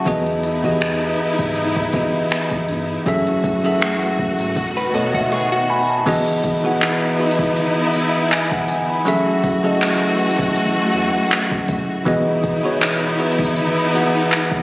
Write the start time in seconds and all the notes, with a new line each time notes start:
Already playing: A5
0.05 E2 E3 B3 D#4 E4 F#4 G#4 D#5, kick, closed hi-hat
0.26 closed hi-hat
0.43 closed hi-hat
0.63 E3 B3 F#4 G4 D#5, kick, closed hi-hat
0.72 G#4
0.81 finger snap, closed hi-hat
1.01 closed hi-hat
1.19 G#2
1.38 G#2, kick, closed hi-hat
1.56 G#2, closed hi-hat
1.76 kick, closed hi-hat
1.93 F#2 E3 B3 F#4 G#4 D#5, kick, closed hi-hat
2.31 finger snap, closed hi-hat
2.51 E2, kick, closed hi-hat
2.69 G2, closed hi-hat
3.06 F#2 E3 F#3 A3 C#4 F#4 G#4 A4 E5, kick, closed hi-hat
3.27 closed hi-hat
3.44 kick, closed hi-hat
3.64 F#3 C#4 G#4 A4 E5, closed hi-hat
3.81 finger snap, closed hi-hat
4.02 closed hi-hat
4.19 G#2, kick
4.39 G#2, closed hi-hat
4.56 B1 D#3 B3, kick, closed hi-hat
4.77 B4, closed hi-hat
4.93 F#2 B2 B3 A4 C#5 D#5, closed hi-hat
5.14 F#4 E5, kick, closed hi-hat
5.32 G#4 F#5 C#6
5.52 F#4
5.70 G#5 B5
5.90 A5
6.06 E1 E3 B3 D#4 E4 F#4 G#4 D#5, kick, closed hi-hat, crash
6.44 kick, closed hi-hat
6.64 E3 B3 F#4 G#4 F#5
6.81 clap, closed hi-hat
7.18 G#1 E3 B3 F#4 G#4 D#5, closed hi-hat
7.31 closed hi-hat
7.39 G#1, kick
7.44 closed hi-hat
7.56 G#1, closed hi-hat
7.93 F#1, closed hi-hat
8.15 E5
8.31 G#5, clap, closed hi-hat
8.51 E1 F#5, kick
8.68 G1 G#5, closed hi-hat
8.90 B5
9.05 F#1 E3 F#3 A3 C#4 F#4 G#4 A4 E5, closed hi-hat
9.44 kick, closed hi-hat
9.63 F#3 C#4 G#4 A4 D#5
9.81 clap, closed hi-hat
10.19 G#1, closed hi-hat
10.31 closed hi-hat
10.39 G#1, kick
10.43 closed hi-hat
10.56 A1, closed hi-hat
10.93 E2, closed hi-hat
11.31 clap, closed hi-hat
11.51 kick
11.68 F1, kick, closed hi-hat
12.05 E1 E3 B3 D#4 E4 F#4 G#4 D#5, kick, closed hi-hat
12.44 kick, closed hi-hat
12.63 E3 B3 F#4 G#4 C#5
12.81 clap, closed hi-hat
13.18 G#1 E3 B3 F#4 G#4 B4, closed hi-hat
13.31 closed hi-hat
13.39 G#1, kick
13.44 closed hi-hat
13.56 G#1, closed hi-hat
13.93 F#1 E3 B3 F#4 G#4 F#5, closed hi-hat
14.31 clap, closed hi-hat
14.51 E1, kick